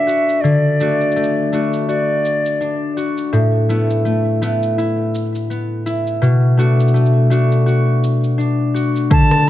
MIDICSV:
0, 0, Header, 1, 4, 480
1, 0, Start_track
1, 0, Tempo, 722892
1, 291, Time_signature, 4, 2, 24, 8
1, 6306, End_track
2, 0, Start_track
2, 0, Title_t, "Flute"
2, 0, Program_c, 0, 73
2, 0, Note_on_c, 0, 76, 83
2, 272, Note_on_c, 0, 74, 80
2, 282, Note_off_c, 0, 76, 0
2, 1070, Note_off_c, 0, 74, 0
2, 1243, Note_on_c, 0, 74, 68
2, 1940, Note_off_c, 0, 74, 0
2, 6054, Note_on_c, 0, 81, 104
2, 6305, Note_off_c, 0, 81, 0
2, 6306, End_track
3, 0, Start_track
3, 0, Title_t, "Harp"
3, 0, Program_c, 1, 46
3, 0, Note_on_c, 1, 50, 74
3, 0, Note_on_c, 1, 57, 54
3, 0, Note_on_c, 1, 62, 52
3, 46, Note_on_c, 1, 66, 58
3, 281, Note_off_c, 1, 50, 0
3, 289, Note_on_c, 1, 50, 77
3, 531, Note_off_c, 1, 57, 0
3, 533, Note_on_c, 1, 57, 51
3, 536, Note_off_c, 1, 62, 0
3, 538, Note_off_c, 1, 66, 0
3, 539, Note_on_c, 1, 62, 52
3, 541, Note_on_c, 1, 66, 55
3, 768, Note_off_c, 1, 57, 0
3, 771, Note_on_c, 1, 57, 56
3, 1010, Note_off_c, 1, 57, 0
3, 1012, Note_on_c, 1, 57, 50
3, 1013, Note_off_c, 1, 62, 0
3, 1015, Note_on_c, 1, 62, 50
3, 1018, Note_off_c, 1, 66, 0
3, 1021, Note_on_c, 1, 66, 56
3, 1249, Note_off_c, 1, 66, 0
3, 1252, Note_on_c, 1, 66, 58
3, 1728, Note_off_c, 1, 62, 0
3, 1731, Note_on_c, 1, 62, 50
3, 1968, Note_off_c, 1, 66, 0
3, 1971, Note_on_c, 1, 66, 58
3, 2208, Note_on_c, 1, 45, 80
3, 2244, Note_off_c, 1, 50, 0
3, 2448, Note_off_c, 1, 57, 0
3, 2450, Note_on_c, 1, 57, 50
3, 2454, Note_on_c, 1, 59, 52
3, 2458, Note_on_c, 1, 64, 56
3, 2686, Note_off_c, 1, 57, 0
3, 2689, Note_on_c, 1, 57, 51
3, 2930, Note_off_c, 1, 57, 0
3, 2932, Note_on_c, 1, 57, 53
3, 2933, Note_off_c, 1, 59, 0
3, 2936, Note_on_c, 1, 59, 49
3, 2938, Note_off_c, 1, 64, 0
3, 2941, Note_on_c, 1, 64, 62
3, 3172, Note_off_c, 1, 64, 0
3, 3174, Note_on_c, 1, 64, 62
3, 3589, Note_off_c, 1, 62, 0
3, 3589, Note_off_c, 1, 66, 0
3, 3650, Note_off_c, 1, 59, 0
3, 3652, Note_on_c, 1, 59, 53
3, 3889, Note_off_c, 1, 64, 0
3, 3891, Note_on_c, 1, 64, 58
3, 4128, Note_on_c, 1, 47, 83
3, 4164, Note_off_c, 1, 45, 0
3, 4362, Note_off_c, 1, 57, 0
3, 4365, Note_on_c, 1, 57, 53
3, 4371, Note_on_c, 1, 62, 53
3, 4374, Note_on_c, 1, 66, 61
3, 4605, Note_off_c, 1, 57, 0
3, 4607, Note_on_c, 1, 57, 53
3, 4845, Note_off_c, 1, 57, 0
3, 4847, Note_on_c, 1, 57, 55
3, 4850, Note_off_c, 1, 62, 0
3, 4852, Note_off_c, 1, 66, 0
3, 4852, Note_on_c, 1, 62, 50
3, 4855, Note_on_c, 1, 66, 62
3, 5085, Note_off_c, 1, 66, 0
3, 5088, Note_on_c, 1, 66, 65
3, 5561, Note_off_c, 1, 62, 0
3, 5564, Note_on_c, 1, 62, 59
3, 5625, Note_off_c, 1, 64, 0
3, 5803, Note_off_c, 1, 66, 0
3, 5806, Note_on_c, 1, 66, 56
3, 6046, Note_on_c, 1, 50, 92
3, 6084, Note_off_c, 1, 47, 0
3, 6287, Note_off_c, 1, 57, 0
3, 6306, Note_off_c, 1, 50, 0
3, 6306, Note_off_c, 1, 59, 0
3, 6306, Note_off_c, 1, 62, 0
3, 6306, Note_off_c, 1, 66, 0
3, 6306, End_track
4, 0, Start_track
4, 0, Title_t, "Drums"
4, 58, Note_on_c, 9, 69, 62
4, 125, Note_off_c, 9, 69, 0
4, 193, Note_on_c, 9, 69, 37
4, 260, Note_off_c, 9, 69, 0
4, 298, Note_on_c, 9, 69, 27
4, 364, Note_off_c, 9, 69, 0
4, 536, Note_on_c, 9, 69, 64
4, 602, Note_off_c, 9, 69, 0
4, 671, Note_on_c, 9, 69, 17
4, 737, Note_off_c, 9, 69, 0
4, 741, Note_on_c, 9, 69, 23
4, 775, Note_off_c, 9, 69, 0
4, 775, Note_on_c, 9, 69, 30
4, 820, Note_off_c, 9, 69, 0
4, 820, Note_on_c, 9, 69, 31
4, 887, Note_off_c, 9, 69, 0
4, 1017, Note_on_c, 9, 69, 72
4, 1084, Note_off_c, 9, 69, 0
4, 1151, Note_on_c, 9, 69, 37
4, 1218, Note_off_c, 9, 69, 0
4, 1257, Note_on_c, 9, 69, 29
4, 1323, Note_off_c, 9, 69, 0
4, 1496, Note_on_c, 9, 69, 62
4, 1563, Note_off_c, 9, 69, 0
4, 1632, Note_on_c, 9, 69, 40
4, 1698, Note_off_c, 9, 69, 0
4, 1738, Note_on_c, 9, 69, 29
4, 1805, Note_off_c, 9, 69, 0
4, 1976, Note_on_c, 9, 69, 65
4, 2042, Note_off_c, 9, 69, 0
4, 2109, Note_on_c, 9, 69, 42
4, 2176, Note_off_c, 9, 69, 0
4, 2216, Note_on_c, 9, 69, 29
4, 2282, Note_off_c, 9, 69, 0
4, 2457, Note_on_c, 9, 69, 64
4, 2523, Note_off_c, 9, 69, 0
4, 2592, Note_on_c, 9, 69, 40
4, 2659, Note_off_c, 9, 69, 0
4, 2697, Note_on_c, 9, 69, 29
4, 2764, Note_off_c, 9, 69, 0
4, 2939, Note_on_c, 9, 69, 79
4, 3005, Note_off_c, 9, 69, 0
4, 3074, Note_on_c, 9, 69, 37
4, 3140, Note_off_c, 9, 69, 0
4, 3179, Note_on_c, 9, 69, 27
4, 3245, Note_off_c, 9, 69, 0
4, 3419, Note_on_c, 9, 69, 69
4, 3486, Note_off_c, 9, 69, 0
4, 3554, Note_on_c, 9, 69, 39
4, 3620, Note_off_c, 9, 69, 0
4, 3658, Note_on_c, 9, 69, 32
4, 3725, Note_off_c, 9, 69, 0
4, 3896, Note_on_c, 9, 69, 68
4, 3962, Note_off_c, 9, 69, 0
4, 4032, Note_on_c, 9, 69, 40
4, 4099, Note_off_c, 9, 69, 0
4, 4140, Note_on_c, 9, 69, 27
4, 4206, Note_off_c, 9, 69, 0
4, 4381, Note_on_c, 9, 69, 69
4, 4447, Note_off_c, 9, 69, 0
4, 4515, Note_on_c, 9, 69, 38
4, 4568, Note_off_c, 9, 69, 0
4, 4568, Note_on_c, 9, 69, 29
4, 4621, Note_off_c, 9, 69, 0
4, 4621, Note_on_c, 9, 69, 28
4, 4687, Note_off_c, 9, 69, 0
4, 4687, Note_on_c, 9, 69, 19
4, 4753, Note_off_c, 9, 69, 0
4, 4858, Note_on_c, 9, 69, 74
4, 4924, Note_off_c, 9, 69, 0
4, 4992, Note_on_c, 9, 69, 37
4, 5059, Note_off_c, 9, 69, 0
4, 5099, Note_on_c, 9, 69, 31
4, 5165, Note_off_c, 9, 69, 0
4, 5337, Note_on_c, 9, 69, 66
4, 5403, Note_off_c, 9, 69, 0
4, 5471, Note_on_c, 9, 69, 40
4, 5537, Note_off_c, 9, 69, 0
4, 5578, Note_on_c, 9, 69, 28
4, 5644, Note_off_c, 9, 69, 0
4, 5817, Note_on_c, 9, 69, 68
4, 5883, Note_off_c, 9, 69, 0
4, 5950, Note_on_c, 9, 69, 43
4, 6016, Note_off_c, 9, 69, 0
4, 6050, Note_on_c, 9, 36, 118
4, 6050, Note_on_c, 9, 42, 56
4, 6055, Note_on_c, 9, 69, 33
4, 6116, Note_off_c, 9, 36, 0
4, 6116, Note_off_c, 9, 42, 0
4, 6121, Note_off_c, 9, 69, 0
4, 6184, Note_on_c, 9, 37, 33
4, 6250, Note_off_c, 9, 37, 0
4, 6306, End_track
0, 0, End_of_file